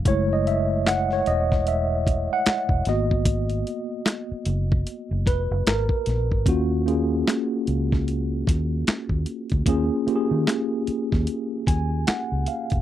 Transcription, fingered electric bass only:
X:1
M:4/4
L:1/16
Q:"Swing 16ths" 1/4=75
K:Ebm
V:1 name="Fingered electric bass" clef=bass
G,,,6 _F,,,4- F,,, z2 F,,, A,,,2- | A,,,2 z4 G,,,2 z G,,, F,,, G,,, A,,, z B,,, A,,, | E,,4 z2 D,,4 E,,2 z E,, z =D,, | E,, z2 E, z3 E,, z2 E,,2 z D,, z F,,, |]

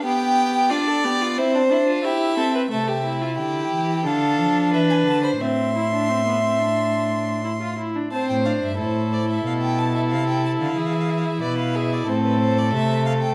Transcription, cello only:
X:1
M:4/4
L:1/16
Q:1/4=90
K:C
V:1 name="Cello" clef=bass
z16 | [K:Am] C,4 D,2 E,2 D,2 F,2 E,2 D,2 | A,,12- A,,2 z2 | z A,,2 G,, A,,4 B,,4 C,3 D, |
E,4 B,,4 A,,4 C,4 |]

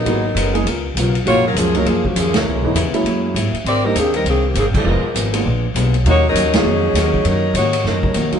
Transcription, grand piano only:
X:1
M:4/4
L:1/8
Q:"Swing" 1/4=200
K:Ebm
V:1 name="Grand piano"
[A,B,CEG] z2 [A,B,CEA] z4 | [G,A,B,DF] z2 [G,A,B,DE] z4 | z [_F,A,CDE] z [G,A,B,D_F]3 z2 | z [=G,B,=C=DE] z6 |
[F,A,CEF] z2 [A,B,C=DF] z4 | [G,B,DEF] z2 [G,B,DEF] z4 | z6 z [G,B,DEF] |]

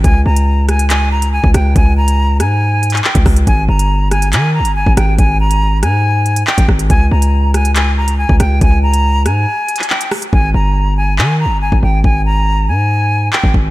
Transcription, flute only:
X:1
M:4/4
L:1/8
Q:1/4=140
K:C#dor
V:1 name="Flute"
g a2 g g a g =g | g a2 g3 =g z | g a2 g g a g =g | g a2 g3 =g z |
g a2 g g a g =g | g a2 g3 =g z | g a2 g g a g =g | g a2 g3 =g z |]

